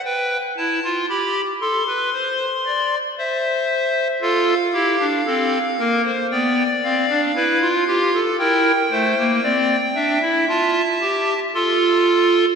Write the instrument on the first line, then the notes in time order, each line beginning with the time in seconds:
pipe organ
0.05 B4 G5
0.57 E4 A5
0.84 F4
1.09 G4 B5
1.61 A4 C6
1.87 B4
2.13 C5
2.66 D5
3.18 C5 E5
4.22 F4 A4 F5
4.74 E4 G4
5.00 D4
5.26 C4 A4
5.79 A#3 A#4
6.05 C5
6.31 B3 D5 G5
6.83 C4 F5
7.09 D4
7.35 E4 B4
7.62 F4
7.88 F4 G4
8.14 A4
8.39 E4 A#4 G5
8.91 A3 C5
9.17 A#3
9.43 C4 D5
9.95 D4 E5
10.22 E4
10.49 F4 A5
11.01 G4
11.54 F4 A4 C6